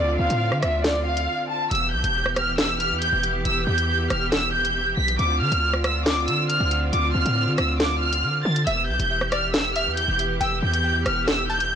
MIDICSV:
0, 0, Header, 1, 6, 480
1, 0, Start_track
1, 0, Tempo, 434783
1, 1890, Time_signature, 4, 2, 24, 8
1, 12974, End_track
2, 0, Start_track
2, 0, Title_t, "Violin section"
2, 0, Program_c, 0, 48
2, 0, Note_on_c, 0, 74, 86
2, 185, Note_off_c, 0, 74, 0
2, 209, Note_on_c, 0, 77, 83
2, 661, Note_off_c, 0, 77, 0
2, 686, Note_on_c, 0, 76, 81
2, 904, Note_off_c, 0, 76, 0
2, 932, Note_on_c, 0, 74, 84
2, 1147, Note_off_c, 0, 74, 0
2, 1169, Note_on_c, 0, 77, 81
2, 1621, Note_off_c, 0, 77, 0
2, 1651, Note_on_c, 0, 81, 74
2, 1866, Note_off_c, 0, 81, 0
2, 1892, Note_on_c, 0, 88, 90
2, 2107, Note_off_c, 0, 88, 0
2, 2132, Note_on_c, 0, 91, 80
2, 2582, Note_off_c, 0, 91, 0
2, 2615, Note_on_c, 0, 89, 79
2, 2829, Note_off_c, 0, 89, 0
2, 2850, Note_on_c, 0, 88, 94
2, 3066, Note_off_c, 0, 88, 0
2, 3087, Note_on_c, 0, 89, 83
2, 3304, Note_off_c, 0, 89, 0
2, 3328, Note_on_c, 0, 91, 95
2, 3544, Note_off_c, 0, 91, 0
2, 3817, Note_on_c, 0, 88, 90
2, 4029, Note_off_c, 0, 88, 0
2, 4050, Note_on_c, 0, 91, 83
2, 4502, Note_off_c, 0, 91, 0
2, 4532, Note_on_c, 0, 89, 79
2, 4747, Note_off_c, 0, 89, 0
2, 4769, Note_on_c, 0, 88, 92
2, 4986, Note_off_c, 0, 88, 0
2, 5006, Note_on_c, 0, 91, 84
2, 5459, Note_off_c, 0, 91, 0
2, 5490, Note_on_c, 0, 95, 78
2, 5706, Note_off_c, 0, 95, 0
2, 5731, Note_on_c, 0, 86, 97
2, 5946, Note_off_c, 0, 86, 0
2, 5969, Note_on_c, 0, 89, 90
2, 6421, Note_off_c, 0, 89, 0
2, 6451, Note_on_c, 0, 88, 79
2, 6666, Note_off_c, 0, 88, 0
2, 6689, Note_on_c, 0, 86, 88
2, 6906, Note_off_c, 0, 86, 0
2, 6927, Note_on_c, 0, 88, 78
2, 7144, Note_off_c, 0, 88, 0
2, 7168, Note_on_c, 0, 89, 89
2, 7385, Note_off_c, 0, 89, 0
2, 7649, Note_on_c, 0, 86, 87
2, 7865, Note_off_c, 0, 86, 0
2, 7888, Note_on_c, 0, 89, 83
2, 8341, Note_off_c, 0, 89, 0
2, 8366, Note_on_c, 0, 88, 82
2, 8584, Note_off_c, 0, 88, 0
2, 8611, Note_on_c, 0, 86, 86
2, 8827, Note_off_c, 0, 86, 0
2, 8849, Note_on_c, 0, 89, 81
2, 9301, Note_off_c, 0, 89, 0
2, 9330, Note_on_c, 0, 93, 75
2, 9546, Note_off_c, 0, 93, 0
2, 9570, Note_on_c, 0, 88, 87
2, 9786, Note_off_c, 0, 88, 0
2, 9810, Note_on_c, 0, 91, 79
2, 10262, Note_off_c, 0, 91, 0
2, 10295, Note_on_c, 0, 89, 80
2, 10508, Note_off_c, 0, 89, 0
2, 10529, Note_on_c, 0, 88, 92
2, 10745, Note_off_c, 0, 88, 0
2, 10766, Note_on_c, 0, 89, 86
2, 10984, Note_off_c, 0, 89, 0
2, 11007, Note_on_c, 0, 91, 96
2, 11224, Note_off_c, 0, 91, 0
2, 11497, Note_on_c, 0, 88, 88
2, 11710, Note_off_c, 0, 88, 0
2, 11731, Note_on_c, 0, 91, 83
2, 12182, Note_off_c, 0, 91, 0
2, 12213, Note_on_c, 0, 89, 82
2, 12427, Note_off_c, 0, 89, 0
2, 12450, Note_on_c, 0, 88, 89
2, 12666, Note_off_c, 0, 88, 0
2, 12685, Note_on_c, 0, 91, 87
2, 12974, Note_off_c, 0, 91, 0
2, 12974, End_track
3, 0, Start_track
3, 0, Title_t, "Synth pluck"
3, 0, Program_c, 1, 84
3, 9570, Note_on_c, 1, 76, 107
3, 10247, Note_off_c, 1, 76, 0
3, 10291, Note_on_c, 1, 74, 80
3, 10742, Note_off_c, 1, 74, 0
3, 10774, Note_on_c, 1, 76, 78
3, 11000, Note_off_c, 1, 76, 0
3, 11489, Note_on_c, 1, 79, 110
3, 11941, Note_off_c, 1, 79, 0
3, 12691, Note_on_c, 1, 81, 81
3, 12919, Note_off_c, 1, 81, 0
3, 12974, End_track
4, 0, Start_track
4, 0, Title_t, "String section"
4, 0, Program_c, 2, 48
4, 0, Note_on_c, 2, 50, 85
4, 0, Note_on_c, 2, 60, 79
4, 0, Note_on_c, 2, 65, 91
4, 1852, Note_off_c, 2, 50, 0
4, 1852, Note_off_c, 2, 60, 0
4, 1852, Note_off_c, 2, 65, 0
4, 1890, Note_on_c, 2, 59, 78
4, 1890, Note_on_c, 2, 67, 94
4, 1891, Note_on_c, 2, 52, 82
4, 5692, Note_off_c, 2, 52, 0
4, 5692, Note_off_c, 2, 59, 0
4, 5692, Note_off_c, 2, 67, 0
4, 5731, Note_on_c, 2, 50, 85
4, 5731, Note_on_c, 2, 60, 75
4, 5731, Note_on_c, 2, 65, 92
4, 9532, Note_off_c, 2, 50, 0
4, 9532, Note_off_c, 2, 60, 0
4, 9532, Note_off_c, 2, 65, 0
4, 9571, Note_on_c, 2, 59, 76
4, 9571, Note_on_c, 2, 67, 95
4, 9572, Note_on_c, 2, 52, 84
4, 12974, Note_off_c, 2, 52, 0
4, 12974, Note_off_c, 2, 59, 0
4, 12974, Note_off_c, 2, 67, 0
4, 12974, End_track
5, 0, Start_track
5, 0, Title_t, "808-style bass"
5, 0, Program_c, 3, 38
5, 0, Note_on_c, 3, 38, 107
5, 200, Note_off_c, 3, 38, 0
5, 210, Note_on_c, 3, 38, 103
5, 326, Note_off_c, 3, 38, 0
5, 330, Note_on_c, 3, 45, 110
5, 571, Note_on_c, 3, 50, 101
5, 587, Note_off_c, 3, 45, 0
5, 685, Note_off_c, 3, 50, 0
5, 691, Note_on_c, 3, 38, 111
5, 1411, Note_off_c, 3, 38, 0
5, 1891, Note_on_c, 3, 28, 107
5, 2131, Note_on_c, 3, 35, 100
5, 2147, Note_off_c, 3, 28, 0
5, 2245, Note_off_c, 3, 35, 0
5, 2251, Note_on_c, 3, 28, 114
5, 3211, Note_on_c, 3, 40, 99
5, 3228, Note_off_c, 3, 28, 0
5, 3439, Note_off_c, 3, 40, 0
5, 3451, Note_on_c, 3, 28, 106
5, 3796, Note_off_c, 3, 28, 0
5, 3811, Note_on_c, 3, 28, 109
5, 4041, Note_off_c, 3, 28, 0
5, 4051, Note_on_c, 3, 40, 107
5, 4511, Note_off_c, 3, 40, 0
5, 4531, Note_on_c, 3, 28, 110
5, 5452, Note_off_c, 3, 28, 0
5, 5491, Note_on_c, 3, 35, 106
5, 5721, Note_off_c, 3, 35, 0
5, 5730, Note_on_c, 3, 38, 108
5, 5970, Note_on_c, 3, 50, 103
5, 5986, Note_off_c, 3, 38, 0
5, 6084, Note_off_c, 3, 50, 0
5, 6091, Note_on_c, 3, 38, 115
5, 6931, Note_on_c, 3, 50, 103
5, 6947, Note_off_c, 3, 38, 0
5, 7273, Note_off_c, 3, 50, 0
5, 7291, Note_on_c, 3, 38, 106
5, 7636, Note_off_c, 3, 38, 0
5, 7651, Note_on_c, 3, 38, 110
5, 7881, Note_off_c, 3, 38, 0
5, 7891, Note_on_c, 3, 38, 107
5, 8006, Note_off_c, 3, 38, 0
5, 8011, Note_on_c, 3, 45, 110
5, 8251, Note_on_c, 3, 50, 101
5, 8267, Note_off_c, 3, 45, 0
5, 8365, Note_off_c, 3, 50, 0
5, 8371, Note_on_c, 3, 38, 111
5, 9091, Note_on_c, 3, 50, 103
5, 9107, Note_off_c, 3, 38, 0
5, 9319, Note_off_c, 3, 50, 0
5, 9330, Note_on_c, 3, 50, 110
5, 9561, Note_off_c, 3, 50, 0
5, 9571, Note_on_c, 3, 28, 104
5, 9811, Note_on_c, 3, 35, 104
5, 9828, Note_off_c, 3, 28, 0
5, 9925, Note_off_c, 3, 35, 0
5, 9931, Note_on_c, 3, 28, 110
5, 10891, Note_on_c, 3, 40, 101
5, 10908, Note_off_c, 3, 28, 0
5, 11119, Note_off_c, 3, 40, 0
5, 11131, Note_on_c, 3, 28, 104
5, 11476, Note_off_c, 3, 28, 0
5, 11490, Note_on_c, 3, 28, 110
5, 11720, Note_off_c, 3, 28, 0
5, 11730, Note_on_c, 3, 40, 105
5, 12191, Note_off_c, 3, 40, 0
5, 12210, Note_on_c, 3, 28, 105
5, 12974, Note_off_c, 3, 28, 0
5, 12974, End_track
6, 0, Start_track
6, 0, Title_t, "Drums"
6, 332, Note_on_c, 9, 42, 74
6, 442, Note_off_c, 9, 42, 0
6, 571, Note_on_c, 9, 37, 70
6, 681, Note_off_c, 9, 37, 0
6, 690, Note_on_c, 9, 37, 96
6, 690, Note_on_c, 9, 42, 72
6, 800, Note_off_c, 9, 42, 0
6, 801, Note_off_c, 9, 37, 0
6, 930, Note_on_c, 9, 38, 121
6, 932, Note_on_c, 9, 42, 75
6, 1040, Note_off_c, 9, 38, 0
6, 1042, Note_off_c, 9, 42, 0
6, 1290, Note_on_c, 9, 42, 81
6, 1400, Note_off_c, 9, 42, 0
6, 1890, Note_on_c, 9, 42, 76
6, 1931, Note_off_c, 9, 42, 0
6, 1931, Note_on_c, 9, 42, 43
6, 2042, Note_off_c, 9, 42, 0
6, 2252, Note_on_c, 9, 42, 77
6, 2362, Note_off_c, 9, 42, 0
6, 2492, Note_on_c, 9, 37, 71
6, 2602, Note_off_c, 9, 37, 0
6, 2609, Note_on_c, 9, 42, 76
6, 2610, Note_on_c, 9, 37, 100
6, 2720, Note_off_c, 9, 37, 0
6, 2720, Note_off_c, 9, 42, 0
6, 2850, Note_on_c, 9, 38, 127
6, 2852, Note_on_c, 9, 42, 73
6, 2961, Note_off_c, 9, 38, 0
6, 2963, Note_off_c, 9, 42, 0
6, 3092, Note_on_c, 9, 42, 73
6, 3202, Note_off_c, 9, 42, 0
6, 3331, Note_on_c, 9, 42, 98
6, 3441, Note_off_c, 9, 42, 0
6, 3571, Note_on_c, 9, 42, 85
6, 3681, Note_off_c, 9, 42, 0
6, 3811, Note_on_c, 9, 42, 74
6, 3922, Note_off_c, 9, 42, 0
6, 4172, Note_on_c, 9, 42, 77
6, 4282, Note_off_c, 9, 42, 0
6, 4530, Note_on_c, 9, 37, 95
6, 4530, Note_on_c, 9, 42, 76
6, 4640, Note_off_c, 9, 42, 0
6, 4641, Note_off_c, 9, 37, 0
6, 4770, Note_on_c, 9, 38, 125
6, 4771, Note_on_c, 9, 42, 81
6, 4880, Note_off_c, 9, 38, 0
6, 4882, Note_off_c, 9, 42, 0
6, 5131, Note_on_c, 9, 42, 87
6, 5241, Note_off_c, 9, 42, 0
6, 5611, Note_on_c, 9, 42, 72
6, 5721, Note_off_c, 9, 42, 0
6, 5731, Note_on_c, 9, 42, 43
6, 5841, Note_off_c, 9, 42, 0
6, 6092, Note_on_c, 9, 42, 77
6, 6203, Note_off_c, 9, 42, 0
6, 6331, Note_on_c, 9, 37, 73
6, 6442, Note_off_c, 9, 37, 0
6, 6449, Note_on_c, 9, 42, 78
6, 6450, Note_on_c, 9, 37, 100
6, 6560, Note_off_c, 9, 42, 0
6, 6561, Note_off_c, 9, 37, 0
6, 6690, Note_on_c, 9, 38, 119
6, 6692, Note_on_c, 9, 42, 70
6, 6800, Note_off_c, 9, 38, 0
6, 6802, Note_off_c, 9, 42, 0
6, 6931, Note_on_c, 9, 42, 70
6, 7041, Note_off_c, 9, 42, 0
6, 7171, Note_on_c, 9, 42, 97
6, 7281, Note_off_c, 9, 42, 0
6, 7410, Note_on_c, 9, 42, 85
6, 7520, Note_off_c, 9, 42, 0
6, 7651, Note_on_c, 9, 42, 79
6, 7761, Note_off_c, 9, 42, 0
6, 8012, Note_on_c, 9, 42, 78
6, 8122, Note_off_c, 9, 42, 0
6, 8369, Note_on_c, 9, 42, 77
6, 8370, Note_on_c, 9, 37, 98
6, 8480, Note_off_c, 9, 37, 0
6, 8480, Note_off_c, 9, 42, 0
6, 8610, Note_on_c, 9, 38, 125
6, 8612, Note_on_c, 9, 42, 78
6, 8720, Note_off_c, 9, 38, 0
6, 8722, Note_off_c, 9, 42, 0
6, 8971, Note_on_c, 9, 42, 81
6, 9082, Note_off_c, 9, 42, 0
6, 9451, Note_on_c, 9, 42, 71
6, 9561, Note_off_c, 9, 42, 0
6, 9570, Note_on_c, 9, 42, 73
6, 9681, Note_off_c, 9, 42, 0
6, 9932, Note_on_c, 9, 42, 77
6, 10042, Note_off_c, 9, 42, 0
6, 10171, Note_on_c, 9, 37, 76
6, 10281, Note_off_c, 9, 37, 0
6, 10289, Note_on_c, 9, 37, 95
6, 10289, Note_on_c, 9, 42, 76
6, 10399, Note_off_c, 9, 42, 0
6, 10400, Note_off_c, 9, 37, 0
6, 10530, Note_on_c, 9, 38, 124
6, 10532, Note_on_c, 9, 42, 74
6, 10640, Note_off_c, 9, 38, 0
6, 10642, Note_off_c, 9, 42, 0
6, 10771, Note_on_c, 9, 42, 72
6, 10881, Note_off_c, 9, 42, 0
6, 11010, Note_on_c, 9, 42, 99
6, 11120, Note_off_c, 9, 42, 0
6, 11251, Note_on_c, 9, 42, 88
6, 11361, Note_off_c, 9, 42, 0
6, 11491, Note_on_c, 9, 42, 74
6, 11601, Note_off_c, 9, 42, 0
6, 11852, Note_on_c, 9, 42, 76
6, 11962, Note_off_c, 9, 42, 0
6, 12208, Note_on_c, 9, 42, 74
6, 12209, Note_on_c, 9, 37, 94
6, 12319, Note_off_c, 9, 37, 0
6, 12319, Note_off_c, 9, 42, 0
6, 12449, Note_on_c, 9, 38, 124
6, 12451, Note_on_c, 9, 42, 79
6, 12559, Note_off_c, 9, 38, 0
6, 12561, Note_off_c, 9, 42, 0
6, 12810, Note_on_c, 9, 42, 83
6, 12921, Note_off_c, 9, 42, 0
6, 12974, End_track
0, 0, End_of_file